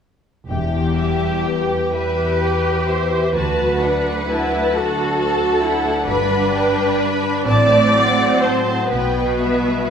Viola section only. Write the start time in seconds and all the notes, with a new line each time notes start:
1.93 G4
3.36 F#4
3.84 D4
4.29 E4
4.75 F#4
5.19 F#4
5.63 E4
6.08 D4
7.47 C4
8.92 B3